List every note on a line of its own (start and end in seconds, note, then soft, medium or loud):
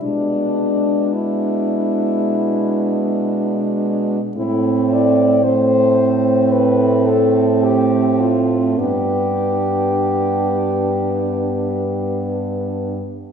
0.01 4.20 B2 soft
0.01 4.20 G#3 soft
0.01 1.15 D4 soft
0.01 4.20 D4 soft
1.13 3.83 E4 medium
4.37 8.74 A2 soft
4.37 5.41 A3 soft
4.37 5.41 C4 soft
4.37 4.94 E4 medium
4.92 5.45 D5 medium
5.43 8.80 A3 soft
5.43 8.80 C4 medium
5.43 6.53 C5 medium
6.52 7.09 B4 medium
7.07 7.65 A4 medium
7.63 8.22 G4 medium
8.20 8.78 F4 soft
8.77 13.00 G2 soft
8.77 13.04 B3 soft
8.77 13.04 D4 soft
8.77 12.19 G4 medium